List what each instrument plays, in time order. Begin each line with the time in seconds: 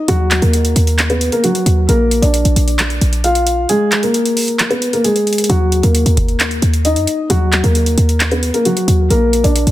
0.08 808-style bass D#2, felt piano F#3 F#4, closed hi-hat
0.31 clap, closed hi-hat
0.42 808-style bass D#2, felt piano A#3 A#4, closed hi-hat
0.53 closed hi-hat
0.65 closed hi-hat
0.76 808-style bass D#2, closed hi-hat
0.87 closed hi-hat
0.99 clap, closed hi-hat
1.10 felt piano B3 B4, closed hi-hat
1.21 closed hi-hat
1.32 felt piano A#3 A#4, closed hi-hat
1.44 felt piano F#3 F#4, closed hi-hat
1.55 closed hi-hat
1.66 808-style bass D#2, closed hi-hat
1.89 808-style bass A#1, felt piano A#3 A#4, closed hi-hat
2.11 closed hi-hat
2.22 808-style bass A#1, felt piano D4 D5, closed hi-hat
2.34 closed hi-hat
2.45 808-style bass A#1, closed hi-hat
2.56 808-style bass A#1, closed hi-hat
2.68 closed hi-hat
2.79 clap, closed hi-hat
2.90 closed hi-hat
3.01 808-style bass A#1, closed hi-hat
3.13 closed hi-hat
3.24 felt piano F4 F5, closed hi-hat
3.35 closed hi-hat
3.47 closed hi-hat
3.69 felt piano G#3 G#4, closed hi-hat
3.92 clap, closed hi-hat
4.03 felt piano A#3 A#4, closed hi-hat
4.14 closed hi-hat
4.26 closed hi-hat
4.37 open hi-hat
4.48 closed hi-hat
4.59 clap, closed hi-hat
4.70 felt piano B3 B4, closed hi-hat
4.82 closed hi-hat
4.93 felt piano A#3 A#4, closed hi-hat
5.04 felt piano G#3 G#4, closed hi-hat
5.16 closed hi-hat
5.27 closed hi-hat
5.33 closed hi-hat
5.38 closed hi-hat
5.44 closed hi-hat
5.49 808-style bass D#2, felt piano F#3 F#4, closed hi-hat
5.72 closed hi-hat
5.83 808-style bass D#2, felt piano A#3 A#4, closed hi-hat
5.95 closed hi-hat
6.06 808-style bass D#2, closed hi-hat
6.17 kick, closed hi-hat
6.29 closed hi-hat
6.40 clap, closed hi-hat
6.51 closed hi-hat
6.62 808-style bass D#2, closed hi-hat
6.74 closed hi-hat
6.85 felt piano D#4 D#5, closed hi-hat
6.96 808-style bass F#2, closed hi-hat
7.07 closed hi-hat
7.30 808-style bass D#2, felt piano F#3 F#4, closed hi-hat
7.53 clap, closed hi-hat
7.64 808-style bass D#2, felt piano A#3 A#4, closed hi-hat
7.75 closed hi-hat
7.86 closed hi-hat
7.98 808-style bass D#2, closed hi-hat
8.09 closed hi-hat
8.20 clap, closed hi-hat
8.31 felt piano B3 B4, closed hi-hat
8.43 closed hi-hat
8.54 felt piano A#3 A#4, closed hi-hat
8.65 felt piano F#3 F#4, closed hi-hat
8.77 closed hi-hat
8.88 808-style bass D#2, closed hi-hat
9.10 808-style bass A#1, felt piano A#3 A#4, closed hi-hat
9.33 closed hi-hat
9.44 808-style bass A#1, felt piano D4 D5, closed hi-hat
9.56 closed hi-hat
9.67 808-style bass A#1, closed hi-hat